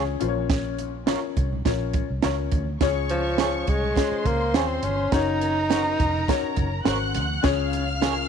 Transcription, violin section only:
2.81 3.95 C#5 medium
2.81 3.95 C#6 medium
3.95 5.09 C5 medium
3.95 5.10 C6 medium
5.13 6.83 A#4 medium
5.13 6.83 A#5 medium
6.87 7.43 F#5 medium
6.87 7.43 F#6 medium
7.43 8.28 F5 medium
7.43 8.28 F6 loud

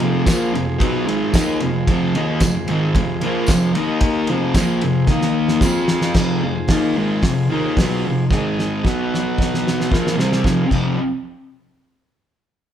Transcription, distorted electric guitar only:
0.00 0.26 F2 medium
0.00 0.25 C3 loud
0.00 0.25 F3 loud
0.26 0.53 A#2 medium
0.26 0.53 F3 medium
0.26 0.53 A#3 medium
0.53 0.75 F2 medium
0.53 0.76 C3 medium
0.78 1.06 B2 medium
0.78 1.06 F#3 loud
0.78 1.07 B3 loud
1.05 1.33 G#2 medium
1.05 1.32 D#3 loud
1.05 1.34 G#3 loud
1.33 1.60 D#3 medium
1.33 1.61 A#3 loud
1.33 1.61 D#4 loud
1.61 1.83 F2 medium
1.61 1.83 C3 medium
1.89 2.15 F2 loud
1.89 2.14 C3 loud
1.89 2.15 F3 loud
2.15 2.41 D#3 medium
2.15 2.42 A#3 loud
2.15 2.42 D#4 loud
2.42 2.63 F2 medium
2.42 2.64 C3 medium
2.69 2.95 G#2 medium
2.69 2.95 D#3 loud
2.69 2.95 G#3 loud
2.96 3.17 F2 medium
2.96 3.18 C3 medium
3.23 3.49 A#2 loud
3.23 3.49 F3 loud
3.23 3.49 A#3 loud
3.49 3.75 F2 medium
3.49 3.75 C3 loud
3.49 3.76 F3 loud
3.75 4.28 D#3 medium
3.75 4.29 A#3 medium
3.75 4.29 D#4 loud
4.29 4.55 F2 medium
4.29 4.56 C3 medium
4.29 4.55 F3 loud
4.56 4.82 A#2 medium
4.56 4.82 F3 medium
4.56 4.83 A#3 medium
4.82 5.04 F2 medium
4.82 5.04 C3 medium
5.10 5.62 D#3 medium
5.10 5.63 A#3 loud
5.10 5.63 D#4 medium
5.63 6.15 F3 medium
5.63 6.16 C4 loud
5.63 6.16 F4 loud
6.16 6.42 F2 medium
6.16 6.42 C3 medium
6.16 6.43 F3 loud
6.44 6.65 F2 medium
6.44 6.65 C3 medium
6.70 6.96 D#3 loud
6.70 6.96 A#3 medium
6.70 6.96 D#4 medium
6.96 7.22 G#2 medium
6.96 7.23 D#3 medium
6.96 7.23 G#3 medium
7.24 7.45 F2 medium
7.24 7.45 C3 medium
7.50 7.76 D#3 medium
7.50 7.76 A#3 loud
7.50 7.77 D#4 loud
7.79 8.04 B2 medium
7.79 8.04 F#3 medium
7.79 8.04 B3 loud
8.07 8.27 F2 medium
8.07 8.27 C3 medium
8.31 8.83 G#2 loud
8.31 8.84 D#3 medium
8.31 8.85 G#3 loud
8.85 9.91 B2 medium
8.85 9.91 F#3 medium
8.85 9.91 B3 loud
9.91 10.16 A#2 medium
9.91 10.17 F3 medium
9.91 10.18 A#3 medium
10.17 10.43 C3 medium
10.17 10.44 G3 medium
10.17 10.44 C4 medium
10.44 10.61 F2 medium
10.44 10.61 C3 loud
10.44 10.61 F3 loud
10.71 10.93 F2 medium
10.71 10.94 C3 medium
10.71 10.94 F3 medium

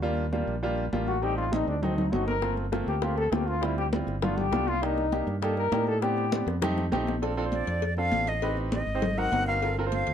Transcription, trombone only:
1.08 1.25 F#4 loud
1.23 1.37 G4 loud
1.37 1.55 F4 loud
1.53 1.67 D#4 loud
1.68 1.85 D4 medium
1.83 1.97 C4 medium
1.97 2.14 D#4 medium
2.13 2.27 F#4 medium
2.28 2.56 A#4 loud
2.88 3.05 G4 medium
3.04 3.17 F4 medium
3.17 3.35 A4 loud
3.34 3.49 G4 loud
3.48 3.66 F4 loud
3.64 3.77 E4 medium
3.78 3.87 G4 loud
4.23 4.40 F4 loud
4.38 4.69 G4 loud
4.68 4.85 F4 loud
4.83 5.28 D#4 loud
5.43 5.56 A4 medium
5.57 5.85 A#4 loud
5.88 6.04 A4 loud
6.02 6.47 G4 loud

